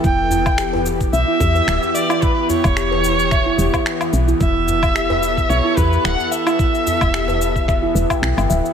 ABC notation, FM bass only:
X:1
M:4/4
L:1/16
Q:"Swing 16ths" 1/4=110
K:Edor
V:1 name="FM bass" clef=bass
E,,,8 B,,, z E,, z D,,, z3 | z3 E,,,6- E,,, E,,, z3 B,,, z | E,,,8 B,,, z E,, z D,,, z3 | z3 E,,,6- E,,, E,,, z B,,, G,,, D,,, z |]